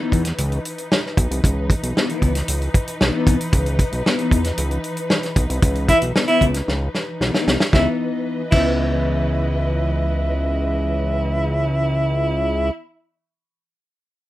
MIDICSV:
0, 0, Header, 1, 6, 480
1, 0, Start_track
1, 0, Key_signature, 4, "minor"
1, 0, Tempo, 525394
1, 1309, Time_signature, 4, 2, 24, 8
1, 13057, End_track
2, 0, Start_track
2, 0, Title_t, "String section"
2, 0, Program_c, 0, 48
2, 0, Note_on_c, 0, 52, 74
2, 0, Note_on_c, 0, 63, 70
2, 0, Note_on_c, 0, 71, 82
2, 7024, Note_off_c, 0, 52, 0
2, 7024, Note_off_c, 0, 71, 0
2, 7025, Note_off_c, 0, 63, 0
2, 7062, Note_on_c, 0, 75, 67
2, 7067, Note_on_c, 0, 71, 76
2, 7068, Note_on_c, 0, 52, 81
2, 10939, Note_off_c, 0, 75, 0
2, 10944, Note_off_c, 0, 71, 0
2, 10945, Note_off_c, 0, 52, 0
2, 13057, End_track
3, 0, Start_track
3, 0, Title_t, "Baritone saxophone"
3, 0, Program_c, 1, 67
3, 5385, Note_on_c, 1, 64, 109
3, 5461, Note_off_c, 1, 64, 0
3, 5733, Note_on_c, 1, 64, 108
3, 5889, Note_off_c, 1, 64, 0
3, 7062, Note_on_c, 1, 64, 89
3, 7196, Note_off_c, 1, 64, 0
3, 7772, Note_on_c, 1, 64, 87
3, 11597, Note_off_c, 1, 64, 0
3, 13057, End_track
4, 0, Start_track
4, 0, Title_t, "Clean electric guitar"
4, 0, Program_c, 2, 27
4, 3, Note_on_c, 2, 63, 85
4, 16, Note_on_c, 2, 59, 73
4, 22, Note_on_c, 2, 52, 72
4, 184, Note_off_c, 2, 63, 0
4, 190, Note_off_c, 2, 59, 0
4, 193, Note_off_c, 2, 52, 0
4, 1793, Note_on_c, 2, 52, 66
4, 1805, Note_on_c, 2, 59, 69
4, 1809, Note_on_c, 2, 63, 70
4, 1915, Note_off_c, 2, 63, 0
4, 1919, Note_off_c, 2, 59, 0
4, 1919, Note_on_c, 2, 64, 73
4, 1923, Note_off_c, 2, 52, 0
4, 1930, Note_on_c, 2, 59, 72
4, 1934, Note_on_c, 2, 52, 64
4, 2100, Note_off_c, 2, 64, 0
4, 2105, Note_off_c, 2, 59, 0
4, 2107, Note_off_c, 2, 52, 0
4, 2754, Note_on_c, 2, 52, 58
4, 2755, Note_on_c, 2, 59, 58
4, 2765, Note_on_c, 2, 63, 68
4, 2860, Note_off_c, 2, 63, 0
4, 2867, Note_off_c, 2, 59, 0
4, 2871, Note_on_c, 2, 63, 86
4, 2876, Note_off_c, 2, 52, 0
4, 2878, Note_on_c, 2, 59, 95
4, 2887, Note_on_c, 2, 52, 80
4, 3055, Note_off_c, 2, 63, 0
4, 3058, Note_off_c, 2, 59, 0
4, 3063, Note_off_c, 2, 52, 0
4, 3703, Note_on_c, 2, 52, 68
4, 3708, Note_on_c, 2, 59, 75
4, 3718, Note_on_c, 2, 64, 79
4, 3823, Note_off_c, 2, 59, 0
4, 3826, Note_off_c, 2, 64, 0
4, 3830, Note_on_c, 2, 63, 93
4, 3833, Note_off_c, 2, 52, 0
4, 3834, Note_on_c, 2, 59, 79
4, 3844, Note_on_c, 2, 52, 66
4, 4014, Note_off_c, 2, 63, 0
4, 4016, Note_off_c, 2, 59, 0
4, 4021, Note_off_c, 2, 52, 0
4, 5621, Note_on_c, 2, 52, 60
4, 5630, Note_on_c, 2, 59, 62
4, 5638, Note_on_c, 2, 63, 76
4, 5725, Note_off_c, 2, 63, 0
4, 5729, Note_off_c, 2, 59, 0
4, 5729, Note_on_c, 2, 64, 80
4, 5734, Note_off_c, 2, 52, 0
4, 5740, Note_on_c, 2, 59, 80
4, 5745, Note_on_c, 2, 52, 68
4, 5922, Note_off_c, 2, 64, 0
4, 5928, Note_off_c, 2, 59, 0
4, 5930, Note_off_c, 2, 52, 0
4, 6583, Note_on_c, 2, 52, 57
4, 6590, Note_on_c, 2, 59, 59
4, 6599, Note_on_c, 2, 63, 66
4, 6690, Note_off_c, 2, 63, 0
4, 6701, Note_off_c, 2, 59, 0
4, 6701, Note_on_c, 2, 63, 97
4, 6706, Note_off_c, 2, 52, 0
4, 6711, Note_on_c, 2, 59, 86
4, 6717, Note_on_c, 2, 52, 69
4, 6889, Note_off_c, 2, 63, 0
4, 6894, Note_off_c, 2, 59, 0
4, 6897, Note_off_c, 2, 52, 0
4, 7051, Note_on_c, 2, 52, 72
4, 7079, Note_on_c, 2, 59, 90
4, 7099, Note_on_c, 2, 63, 107
4, 7682, Note_off_c, 2, 52, 0
4, 7682, Note_off_c, 2, 59, 0
4, 7682, Note_off_c, 2, 63, 0
4, 7778, Note_on_c, 2, 52, 72
4, 7808, Note_on_c, 2, 59, 72
4, 11692, Note_off_c, 2, 52, 0
4, 11721, Note_off_c, 2, 59, 0
4, 13057, End_track
5, 0, Start_track
5, 0, Title_t, "Analog synth bass"
5, 0, Program_c, 3, 38
5, 112, Note_on_c, 3, 40, 85
5, 299, Note_off_c, 3, 40, 0
5, 355, Note_on_c, 3, 37, 114
5, 541, Note_off_c, 3, 37, 0
5, 1076, Note_on_c, 3, 35, 95
5, 1167, Note_off_c, 3, 35, 0
5, 1196, Note_on_c, 3, 36, 96
5, 1287, Note_off_c, 3, 36, 0
5, 1316, Note_on_c, 3, 37, 98
5, 1595, Note_off_c, 3, 37, 0
5, 1674, Note_on_c, 3, 35, 91
5, 1766, Note_off_c, 3, 35, 0
5, 2030, Note_on_c, 3, 37, 86
5, 2217, Note_off_c, 3, 37, 0
5, 2271, Note_on_c, 3, 37, 96
5, 2457, Note_off_c, 3, 37, 0
5, 2750, Note_on_c, 3, 35, 107
5, 2842, Note_off_c, 3, 35, 0
5, 2987, Note_on_c, 3, 36, 101
5, 3080, Note_off_c, 3, 36, 0
5, 3229, Note_on_c, 3, 37, 97
5, 3509, Note_off_c, 3, 37, 0
5, 3586, Note_on_c, 3, 35, 85
5, 3679, Note_off_c, 3, 35, 0
5, 3941, Note_on_c, 3, 40, 86
5, 4130, Note_off_c, 3, 40, 0
5, 4185, Note_on_c, 3, 37, 95
5, 4372, Note_off_c, 3, 37, 0
5, 4901, Note_on_c, 3, 35, 98
5, 4996, Note_off_c, 3, 35, 0
5, 5023, Note_on_c, 3, 36, 113
5, 5117, Note_off_c, 3, 36, 0
5, 5141, Note_on_c, 3, 37, 113
5, 5423, Note_off_c, 3, 37, 0
5, 5502, Note_on_c, 3, 35, 86
5, 5596, Note_off_c, 3, 35, 0
5, 5860, Note_on_c, 3, 37, 87
5, 6049, Note_off_c, 3, 37, 0
5, 6105, Note_on_c, 3, 37, 99
5, 6292, Note_off_c, 3, 37, 0
5, 6585, Note_on_c, 3, 35, 94
5, 6678, Note_off_c, 3, 35, 0
5, 6826, Note_on_c, 3, 36, 101
5, 6919, Note_off_c, 3, 36, 0
5, 7065, Note_on_c, 3, 37, 98
5, 7198, Note_off_c, 3, 37, 0
5, 7789, Note_on_c, 3, 37, 102
5, 11605, Note_off_c, 3, 37, 0
5, 13057, End_track
6, 0, Start_track
6, 0, Title_t, "Drums"
6, 111, Note_on_c, 9, 36, 78
6, 117, Note_on_c, 9, 42, 51
6, 203, Note_off_c, 9, 36, 0
6, 209, Note_off_c, 9, 42, 0
6, 226, Note_on_c, 9, 42, 61
6, 234, Note_on_c, 9, 38, 34
6, 317, Note_off_c, 9, 42, 0
6, 326, Note_off_c, 9, 38, 0
6, 350, Note_on_c, 9, 42, 106
6, 441, Note_off_c, 9, 42, 0
6, 474, Note_on_c, 9, 42, 35
6, 565, Note_off_c, 9, 42, 0
6, 595, Note_on_c, 9, 42, 62
6, 686, Note_off_c, 9, 42, 0
6, 714, Note_on_c, 9, 42, 51
6, 805, Note_off_c, 9, 42, 0
6, 838, Note_on_c, 9, 38, 109
6, 929, Note_off_c, 9, 38, 0
6, 968, Note_on_c, 9, 38, 31
6, 1060, Note_off_c, 9, 38, 0
6, 1072, Note_on_c, 9, 36, 95
6, 1074, Note_on_c, 9, 42, 86
6, 1163, Note_off_c, 9, 36, 0
6, 1165, Note_off_c, 9, 42, 0
6, 1200, Note_on_c, 9, 42, 60
6, 1291, Note_off_c, 9, 42, 0
6, 1314, Note_on_c, 9, 36, 108
6, 1320, Note_on_c, 9, 42, 84
6, 1405, Note_off_c, 9, 36, 0
6, 1411, Note_off_c, 9, 42, 0
6, 1550, Note_on_c, 9, 36, 94
6, 1556, Note_on_c, 9, 42, 74
6, 1642, Note_off_c, 9, 36, 0
6, 1647, Note_off_c, 9, 42, 0
6, 1675, Note_on_c, 9, 42, 55
6, 1766, Note_off_c, 9, 42, 0
6, 1799, Note_on_c, 9, 38, 89
6, 1891, Note_off_c, 9, 38, 0
6, 1913, Note_on_c, 9, 42, 31
6, 2004, Note_off_c, 9, 42, 0
6, 2028, Note_on_c, 9, 36, 75
6, 2031, Note_on_c, 9, 42, 53
6, 2119, Note_off_c, 9, 36, 0
6, 2122, Note_off_c, 9, 42, 0
6, 2147, Note_on_c, 9, 42, 61
6, 2156, Note_on_c, 9, 38, 34
6, 2239, Note_off_c, 9, 42, 0
6, 2247, Note_off_c, 9, 38, 0
6, 2266, Note_on_c, 9, 42, 100
6, 2357, Note_off_c, 9, 42, 0
6, 2390, Note_on_c, 9, 42, 37
6, 2482, Note_off_c, 9, 42, 0
6, 2507, Note_on_c, 9, 36, 98
6, 2508, Note_on_c, 9, 42, 59
6, 2598, Note_off_c, 9, 36, 0
6, 2600, Note_off_c, 9, 42, 0
6, 2626, Note_on_c, 9, 42, 51
6, 2718, Note_off_c, 9, 42, 0
6, 2748, Note_on_c, 9, 38, 106
6, 2840, Note_off_c, 9, 38, 0
6, 2985, Note_on_c, 9, 36, 107
6, 2988, Note_on_c, 9, 42, 80
6, 3076, Note_off_c, 9, 36, 0
6, 3079, Note_off_c, 9, 42, 0
6, 3111, Note_on_c, 9, 42, 59
6, 3203, Note_off_c, 9, 42, 0
6, 3223, Note_on_c, 9, 42, 81
6, 3224, Note_on_c, 9, 36, 99
6, 3314, Note_off_c, 9, 42, 0
6, 3315, Note_off_c, 9, 36, 0
6, 3344, Note_on_c, 9, 42, 37
6, 3436, Note_off_c, 9, 42, 0
6, 3462, Note_on_c, 9, 36, 94
6, 3463, Note_on_c, 9, 42, 71
6, 3553, Note_off_c, 9, 36, 0
6, 3555, Note_off_c, 9, 42, 0
6, 3585, Note_on_c, 9, 42, 53
6, 3677, Note_off_c, 9, 42, 0
6, 3712, Note_on_c, 9, 38, 93
6, 3803, Note_off_c, 9, 38, 0
6, 3824, Note_on_c, 9, 42, 31
6, 3916, Note_off_c, 9, 42, 0
6, 3941, Note_on_c, 9, 36, 85
6, 3948, Note_on_c, 9, 42, 58
6, 4033, Note_off_c, 9, 36, 0
6, 4039, Note_off_c, 9, 42, 0
6, 4060, Note_on_c, 9, 42, 60
6, 4069, Note_on_c, 9, 38, 31
6, 4151, Note_off_c, 9, 42, 0
6, 4160, Note_off_c, 9, 38, 0
6, 4180, Note_on_c, 9, 42, 104
6, 4272, Note_off_c, 9, 42, 0
6, 4302, Note_on_c, 9, 42, 37
6, 4393, Note_off_c, 9, 42, 0
6, 4419, Note_on_c, 9, 42, 59
6, 4511, Note_off_c, 9, 42, 0
6, 4538, Note_on_c, 9, 42, 51
6, 4629, Note_off_c, 9, 42, 0
6, 4660, Note_on_c, 9, 38, 111
6, 4752, Note_off_c, 9, 38, 0
6, 4778, Note_on_c, 9, 42, 35
6, 4790, Note_on_c, 9, 38, 33
6, 4869, Note_off_c, 9, 42, 0
6, 4882, Note_off_c, 9, 38, 0
6, 4898, Note_on_c, 9, 36, 98
6, 4898, Note_on_c, 9, 42, 81
6, 4989, Note_off_c, 9, 36, 0
6, 4989, Note_off_c, 9, 42, 0
6, 5023, Note_on_c, 9, 42, 60
6, 5115, Note_off_c, 9, 42, 0
6, 5136, Note_on_c, 9, 42, 83
6, 5138, Note_on_c, 9, 36, 111
6, 5228, Note_off_c, 9, 42, 0
6, 5230, Note_off_c, 9, 36, 0
6, 5256, Note_on_c, 9, 42, 32
6, 5347, Note_off_c, 9, 42, 0
6, 5376, Note_on_c, 9, 36, 92
6, 5377, Note_on_c, 9, 42, 65
6, 5468, Note_off_c, 9, 36, 0
6, 5469, Note_off_c, 9, 42, 0
6, 5496, Note_on_c, 9, 42, 56
6, 5587, Note_off_c, 9, 42, 0
6, 5624, Note_on_c, 9, 38, 102
6, 5715, Note_off_c, 9, 38, 0
6, 5734, Note_on_c, 9, 42, 33
6, 5825, Note_off_c, 9, 42, 0
6, 5858, Note_on_c, 9, 36, 78
6, 5862, Note_on_c, 9, 42, 52
6, 5949, Note_off_c, 9, 36, 0
6, 5953, Note_off_c, 9, 42, 0
6, 5977, Note_on_c, 9, 42, 58
6, 5985, Note_on_c, 9, 38, 33
6, 6068, Note_off_c, 9, 42, 0
6, 6077, Note_off_c, 9, 38, 0
6, 6106, Note_on_c, 9, 38, 57
6, 6197, Note_off_c, 9, 38, 0
6, 6346, Note_on_c, 9, 38, 62
6, 6437, Note_off_c, 9, 38, 0
6, 6588, Note_on_c, 9, 38, 73
6, 6679, Note_off_c, 9, 38, 0
6, 6710, Note_on_c, 9, 38, 88
6, 6802, Note_off_c, 9, 38, 0
6, 6832, Note_on_c, 9, 38, 110
6, 6923, Note_off_c, 9, 38, 0
6, 6947, Note_on_c, 9, 38, 110
6, 7039, Note_off_c, 9, 38, 0
6, 7063, Note_on_c, 9, 36, 104
6, 7069, Note_on_c, 9, 38, 83
6, 7154, Note_off_c, 9, 36, 0
6, 7160, Note_off_c, 9, 38, 0
6, 7785, Note_on_c, 9, 49, 84
6, 7786, Note_on_c, 9, 36, 95
6, 7876, Note_off_c, 9, 49, 0
6, 7877, Note_off_c, 9, 36, 0
6, 13057, End_track
0, 0, End_of_file